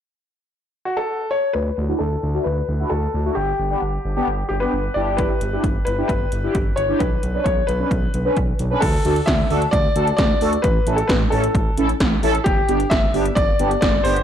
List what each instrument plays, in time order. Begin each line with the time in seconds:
0.85 grand piano F#4
0.97 grand piano A4
1.31 grand piano C#5
1.53 analog synth bass D2, grand piano B4
1.78 analog synth bass D2, analog polysynth E4 F#4
1.89 analog polysynth D4 E4 F#4
1.99 analog synth bass D2, grand piano A4
2.23 analog synth bass D2, analog polysynth E4 F#4
2.35 analog polysynth D4 E4 F#4
2.44 analog synth bass D2, grand piano B4
2.69 analog synth bass D2, analog polysynth E4 F#4
2.80 analog polysynth D4 E4 F#4
2.90 analog synth bass D2, grand piano A4
3.14 analog synth bass D2, analog polysynth E4 F#4
3.26 analog polysynth D4 E4 F#4
3.35 analog synth bass G1, grand piano G4
3.59 analog synth bass G1, analog polysynth D4 G4
3.71 analog polysynth B3 D4 G4
3.82 analog synth bass G1
4.05 analog synth bass G1, analog polysynth D4 G4
4.16 analog polysynth B3 D4 G4
4.27 analog synth bass G1
4.49 analog synth bass G1, analog polysynth D4 G4, grand piano G4
4.60 analog polysynth B3 D4 G4, grand piano B4
4.73 analog synth bass G1
4.94 analog synth bass G1, analog polysynth D4 E4 G4, grand piano D5
5.17 grand piano B4, kick, closed hi-hat
5.41 analog synth bass G1, analog polysynth E4 G4, closed hi-hat
5.53 analog polysynth D4 E4 G4
5.64 analog synth bass G1, kick, closed hi-hat
5.85 analog synth bass G1, analog polysynth E4 G4, grand piano B4, closed hi-hat
5.98 analog polysynth D4 E4 G4
6.08 analog synth bass G1, grand piano B4, kick, closed hi-hat
6.32 analog synth bass G1, analog polysynth E4 G4, closed hi-hat
6.44 analog polysynth D4 E4 G4
6.55 analog synth bass G1, kick, closed hi-hat
6.76 analog synth bass G1, analog polysynth E4 F#4, grand piano C#5, closed hi-hat
6.89 analog polysynth D4 E4 G4
6.99 analog synth bass B1, grand piano B4, kick, closed hi-hat
7.23 analog synth bass B1, analog polysynth D4 B4, closed hi-hat
7.34 analog polysynth C#4 D4 B4
7.44 analog synth bass B1, grand piano C#5, kick, closed hi-hat
7.67 analog synth bass B1, analog polysynth D4 B4, grand piano B4, closed hi-hat
7.80 analog polysynth C#4 D4 B4
7.91 analog synth bass B1, kick, closed hi-hat
8.14 analog synth bass B1, analog polysynth D4 B4, closed hi-hat
8.25 analog polysynth C#4 D4 B4
8.37 analog synth bass B1, kick, closed hi-hat
8.59 analog synth bass B1, analog polysynth D4 B4, closed hi-hat
8.71 analog polysynth C#4 D4 B4
8.80 analog synth bass D2, grand piano A4, kick, closed hi-hat, crash
9.05 analog synth bass D2, analog polysynth D4 F#4 A4, closed hi-hat
9.16 closed hi-hat
9.26 analog synth bass D2, grand piano E5, kick, snare, closed hi-hat
9.50 analog synth bass D2, analog polysynth D4 F#4 A4, open hi-hat
9.62 closed hi-hat
9.71 analog synth bass D2, grand piano D5, kick, closed hi-hat
9.96 analog synth bass D2, analog polysynth D4 F#4 A4, closed hi-hat
10.07 closed hi-hat
10.17 analog synth bass D2, grand piano D5, kick, snare, closed hi-hat
10.41 analog synth bass D2, analog polysynth D4 F#4 A4, open hi-hat
10.53 closed hi-hat
10.62 analog synth bass A1, grand piano B4, kick, closed hi-hat
10.87 analog synth bass A1, analog polysynth C#4 E4 A4, closed hi-hat
10.96 grand piano A4, closed hi-hat
11.08 analog synth bass A1, grand piano B4, kick, snare, closed hi-hat
11.30 analog synth bass A1, analog polysynth C#4 E4 A4, grand piano A4, open hi-hat
11.44 closed hi-hat
11.55 analog synth bass A1, kick, closed hi-hat
11.78 analog synth bass A1, analog polysynth C#4 E4 A4, closed hi-hat
11.89 closed hi-hat
12.00 analog synth bass A1, kick, snare, closed hi-hat
12.23 analog synth bass A1, analog polysynth C#4 E4 A4, open hi-hat
12.35 closed hi-hat
12.44 analog synth bass G1, grand piano G4, kick, closed hi-hat
12.68 analog synth bass G1, analog polysynth B3 D4 G4, closed hi-hat
12.80 closed hi-hat
12.90 analog synth bass G1, grand piano E5, kick, snare, closed hi-hat
13.14 analog synth bass G1, analog polysynth B3 D4 G4, open hi-hat
13.26 closed hi-hat
13.35 analog synth bass G1, grand piano D5, kick, closed hi-hat
13.59 analog synth bass G1, analog polysynth B3 D4 G4, closed hi-hat
13.71 closed hi-hat
13.81 analog synth bass G1, grand piano D5, kick, snare, closed hi-hat
14.04 analog synth bass G1, analog polysynth B3 D4 G4, grand piano C5, open hi-hat
14.16 closed hi-hat